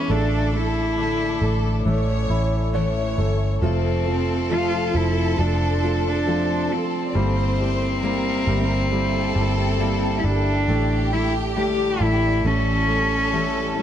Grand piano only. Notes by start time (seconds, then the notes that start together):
Already playing: E3 B3
0.09 A3
0.54 A3
0.98 A3
1.42 A3
1.86 A3
2.30 E4
2.75 C#5
3.18 A3
3.62 F3
4.06 F3
4.50 F3
4.95 F3
5.39 F3
5.83 F3
6.27 F3
6.71 F3
7.15 G3
7.60 G3
8.04 G3
8.47 G3
8.92 G3
9.36 G3
9.80 G3
10.24 G3
10.69 A3
11.13 A3
11.57 A3
12.01 A3
12.45 A3
12.89 A3
13.33 A3
13.78 A3